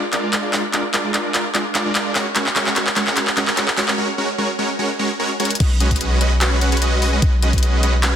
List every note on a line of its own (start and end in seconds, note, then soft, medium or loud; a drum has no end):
0.13 0.21 G#3 medium
0.13 0.21 D4 medium
0.13 0.21 F4 medium
0.13 0.21 A#4 medium
0.13 0.21 D5 loud
0.13 clap medium
0.13 closed hi-hat medium
0.23 0.31 G#3 medium
0.23 0.31 D4 medium
0.23 0.31 F4 medium
0.23 0.31 A#4 medium
0.23 0.31 D5 medium
0.33 0.51 G#3 medium
0.33 0.51 D4 medium
0.33 0.51 F4 medium
0.33 0.51 A#4 medium
0.33 0.51 D5 medium
0.33 clap medium
0.33 closed hi-hat medium
0.53 0.63 G#3 medium
0.53 0.63 D4 medium
0.53 0.63 F4 medium
0.53 0.63 A#4 medium
0.53 0.63 D5 medium
0.53 clap medium
0.53 open hi-hat medium
0.73 0.84 G#3 medium
0.73 0.84 D4 medium
0.73 0.84 F4 medium
0.73 0.84 A#4 medium
0.73 0.84 D5 loud
0.73 clap medium
0.73 closed hi-hat medium
0.94 1.02 G#3 medium
0.94 1.02 D4 medium
0.94 1.02 F4 medium
0.94 1.02 A#4 medium
0.94 1.02 D5 loud
0.94 clap medium
0.94 closed hi-hat medium
1.04 1.12 G#3 medium
1.04 1.12 D4 medium
1.04 1.12 F4 medium
1.04 1.12 A#4 medium
1.04 1.12 D5 medium
1.14 1.32 G#3 medium
1.14 1.32 D4 medium
1.14 1.32 F4 medium
1.14 1.32 A#4 medium
1.14 1.32 D5 medium
1.14 clap medium
1.14 closed hi-hat medium
1.34 1.45 G#3 medium
1.34 1.45 D4 medium
1.34 1.45 F4 medium
1.34 1.45 A#4 medium
1.34 1.45 D5 loud
1.34 clap medium
1.34 closed hi-hat medium
1.55 1.65 G#3 medium
1.55 1.65 D4 medium
1.55 1.65 F4 medium
1.55 1.65 A#4 medium
1.55 1.65 D5 medium
1.55 clap medium
1.55 closed hi-hat medium
1.75 1.83 G#3 medium
1.75 1.83 D4 medium
1.75 1.83 F4 medium
1.75 1.83 A#4 medium
1.75 1.83 D5 loud
1.75 clap medium
1.75 closed hi-hat medium
1.86 1.93 G#3 medium
1.86 1.93 D4 medium
1.86 1.93 F4 medium
1.86 1.93 A#4 medium
1.86 1.93 D5 loud
1.95 2.13 G#3 medium
1.95 2.13 D4 medium
1.95 2.13 F4 medium
1.95 2.13 A#4 medium
1.95 2.13 D5 medium
1.95 clap medium
1.95 closed hi-hat medium
2.15 2.26 G#3 medium
2.15 2.26 C#4 medium
2.15 2.26 F#4 medium
2.15 2.26 A#4 medium
2.15 2.26 C#5 loud
2.15 clap medium
2.15 open hi-hat medium
2.36 2.46 G#3 medium
2.36 2.46 C#4 medium
2.36 2.46 F#4 medium
2.36 2.46 A#4 medium
2.36 2.46 C#5 loud
2.36 clap loud
2.36 closed hi-hat medium
2.46 clap medium
2.56 2.64 G#3 loud
2.56 2.64 C#4 medium
2.56 2.64 F#4 medium
2.56 2.64 A#4 medium
2.56 2.64 C#5 loud
2.56 clap loud
2.56 closed hi-hat medium
2.66 2.74 G#3 medium
2.66 2.74 C#4 medium
2.66 2.74 F#4 medium
2.66 2.74 A#4 medium
2.66 2.74 C#5 medium
2.66 clap medium
2.76 2.86 G#3 medium
2.76 2.86 C#4 medium
2.76 2.86 F#4 medium
2.76 2.86 A#4 medium
2.76 2.86 C#5 loud
2.76 clap loud
2.76 closed hi-hat medium
2.87 clap medium
2.96 3.05 G#3 loud
2.96 3.05 C#4 medium
2.96 3.05 F#4 medium
2.96 3.05 A#4 medium
2.96 3.05 C#5 loud
2.96 clap loud
2.96 closed hi-hat medium
3.07 3.14 G#3 medium
3.07 3.14 C#4 medium
3.07 3.14 F#4 medium
3.07 3.14 A#4 medium
3.07 3.14 C#5 medium
3.07 clap medium
3.16 3.27 G#3 medium
3.16 3.27 C#4 medium
3.16 3.27 F#4 medium
3.16 3.27 A#4 medium
3.16 3.27 C#5 loud
3.16 clap loud
3.16 closed hi-hat medium
3.27 clap medium
3.37 3.45 G#3 medium
3.37 3.45 C#4 medium
3.37 3.45 F#4 medium
3.37 3.45 A#4 medium
3.37 3.45 C#5 loud
3.37 clap medium
3.37 closed hi-hat medium
3.47 3.55 G#3 medium
3.47 3.55 C#4 medium
3.47 3.55 F#4 medium
3.47 3.55 A#4 medium
3.47 3.55 C#5 loud
3.47 clap medium
3.57 3.67 G#3 loud
3.57 3.67 C#4 medium
3.57 3.67 F#4 loud
3.57 3.67 A#4 medium
3.57 3.67 C#5 loud
3.57 clap loud
3.57 closed hi-hat medium
3.68 clap medium
3.77 3.86 G#3 loud
3.77 3.86 C#4 medium
3.77 3.86 F#4 medium
3.77 3.86 A#4 medium
3.77 3.86 C#5 loud
3.77 clap loud
3.77 open hi-hat loud
3.88 3.96 G#3 medium
3.88 3.96 C#4 medium
3.88 3.96 F#4 medium
3.88 3.96 A#4 medium
3.88 3.96 C#5 medium
3.88 clap medium
3.98 4.08 G#3 loud
3.98 4.08 C#4 medium
3.98 4.08 F#4 medium
3.98 4.08 A#4 medium
3.98 4.08 C#5 loud
4.18 4.28 G#3 loud
4.18 4.28 C#4 medium
4.18 4.28 F#4 medium
4.18 4.28 A#4 medium
4.18 4.28 C#5 loud
4.38 4.49 G#3 medium
4.38 4.49 C#4 medium
4.38 4.49 F#4 medium
4.38 4.49 A#4 medium
4.38 4.49 C#5 loud
4.59 4.69 G#3 loud
4.59 4.69 C#4 loud
4.59 4.69 F#4 medium
4.59 4.69 A#4 medium
4.59 4.69 C#5 loud
4.79 4.89 G#3 medium
4.79 4.89 C#4 medium
4.79 4.89 F#4 medium
4.79 4.89 A#4 medium
4.79 4.89 C#5 loud
4.99 5.09 G#3 loud
4.99 5.09 C#4 medium
4.99 5.09 F#4 medium
4.99 5.09 A#4 medium
4.99 5.09 C#5 loud
5.20 5.30 G#3 loud
5.20 5.30 C#4 medium
5.20 5.30 F#4 loud
5.20 5.30 A#4 loud
5.20 5.30 C#5 loud
5.40 5.50 G#3 loud
5.40 5.50 C#4 medium
5.40 5.50 F#4 loud
5.40 5.50 A#4 medium
5.40 5.50 C#5 loud
5.40 closed hi-hat medium
5.45 closed hi-hat medium
5.50 closed hi-hat medium
5.55 closed hi-hat medium
5.60 7.20 B1 medium
5.60 5.70 G#3 medium
5.60 5.70 C#4 medium
5.60 5.70 F#4 medium
5.60 5.70 B4 medium
5.60 5.70 D#5 loud
5.60 kick loud
5.60 closed hi-hat medium
5.60 crash loud
5.80 5.88 G#3 loud
5.80 5.88 C#4 loud
5.80 5.88 F#4 medium
5.80 5.88 B4 medium
5.80 5.88 D#5 loud
5.80 closed hi-hat medium
5.91 5.98 G#3 medium
5.91 5.98 C#4 medium
5.91 5.98 F#4 medium
5.91 5.98 B4 medium
5.91 5.98 D#5 medium
5.91 kick medium
5.91 closed hi-hat medium
5.96 closed hi-hat medium
6.01 6.19 G#3 medium
6.01 6.19 C#4 medium
6.01 6.19 F#4 medium
6.01 6.19 B4 medium
6.01 6.19 D#5 medium
6.01 closed hi-hat medium
6.21 6.31 G#3 medium
6.21 6.31 C#4 medium
6.21 6.31 F#4 medium
6.21 6.31 B4 medium
6.21 6.31 D#5 loud
6.21 closed hi-hat medium
6.41 6.59 G#3 medium
6.41 6.59 C#4 medium
6.41 6.59 F#4 medium
6.41 6.59 B4 medium
6.41 6.59 C#5 loud
6.41 clap loud
6.41 closed hi-hat medium
6.61 6.70 G#3 medium
6.61 6.70 C#4 medium
6.61 6.70 F#4 medium
6.61 6.70 B4 medium
6.61 6.70 F#5 loud
6.61 closed hi-hat medium
6.72 6.79 G#3 medium
6.72 6.79 C#4 medium
6.72 6.80 F#4 medium
6.72 6.80 B4 medium
6.72 6.80 C#5 loud
6.72 closed hi-hat medium
6.77 closed hi-hat medium
6.82 7.00 G#3 medium
6.82 7.00 C#4 medium
6.82 7.00 F#4 medium
6.82 7.00 B4 medium
6.82 7.00 D#5 loud
6.82 closed hi-hat medium
7.02 7.10 G#3 medium
7.02 7.10 C#4 medium
7.02 7.10 F#4 medium
7.02 7.10 B4 medium
7.02 7.10 D#5 medium
7.02 open hi-hat medium
7.13 7.20 G#3 medium
7.13 7.20 C#4 medium
7.13 7.20 F#4 medium
7.13 7.20 B4 medium
7.13 7.20 D#5 medium
7.22 8.16 B1 medium
7.22 7.33 G#3 loud
7.22 7.32 C#4 medium
7.22 7.33 F#4 medium
7.22 7.33 B4 medium
7.22 7.33 D#5 loud
7.22 kick loud
7.22 closed hi-hat medium
7.42 7.51 G#3 loud
7.42 7.51 C#4 medium
7.42 7.51 F#4 medium
7.42 7.51 B4 medium
7.42 7.51 D#5 loud
7.42 closed hi-hat medium
7.53 7.61 G#3 medium
7.53 7.61 C#4 medium
7.53 7.61 F#4 medium
7.53 7.61 B4 medium
7.53 7.61 D#5 medium
7.53 kick medium
7.53 closed hi-hat soft
7.58 closed hi-hat medium
7.63 7.81 G#3 medium
7.63 7.81 C#4 medium
7.63 7.81 F#4 medium
7.63 7.81 B4 medium
7.63 7.81 D#5 medium
7.63 closed hi-hat medium
7.83 7.93 G#3 medium
7.83 7.93 C#4 medium
7.83 7.93 F#4 medium
7.83 7.93 B4 medium
7.83 7.93 D#5 loud
7.83 closed hi-hat medium
8.03 8.16 G#3 medium
8.03 8.16 C#4 medium
8.03 8.16 F#4 medium
8.03 8.16 B4 medium
8.03 8.16 C#5 loud
8.03 clap loud
8.03 closed hi-hat medium